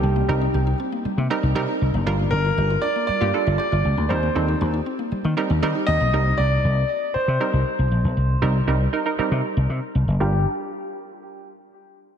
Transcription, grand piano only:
X:1
M:4/4
L:1/8
Q:1/4=118
K:Cdor
V:1 name="Grand piano"
G3 z4 z | z B2 d d2 d2 | c2 z4 z e- | e d3 c4- |
c6 z2 | G z6 z |]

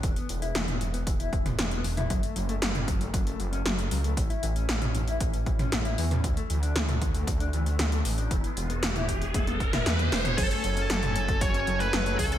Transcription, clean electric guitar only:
X:1
M:4/4
L:1/16
Q:1/4=116
K:F#m
V:1 name="Clean electric guitar" clef=bass
E, B, E, E E, B, E, B, E, E E, B, E, B, E, E | F, A, F, A, F, C F, A, F, A, F, C F, A, F, A, | E, E E, C E, C E, E E, C E, C E, E E, C | E, A, E, D E, A, E, A, E, D E, A, E, A, E, D |
E, B, E, B, E, E E, B, E, B, E, E E, B, E, B, | F, A, F, C F, A, F, A, F, C F, A, F, A, F, C |]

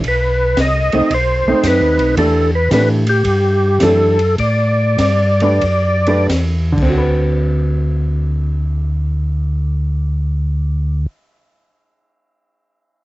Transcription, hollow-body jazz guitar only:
X:1
M:4/4
L:1/8
Q:"Swing" 1/4=92
K:Dmix
V:1 name="Hollow-body jazz guitar"
z3 [A,C^D] z [A,CD]3 | [E,A,DG] z [E,A,DG] z3 [E,A,DG] z | z3 [A,DGB] z [A,DGB] z [D,CFB]- | [D,CFB]8- |
[D,CFB]8 |]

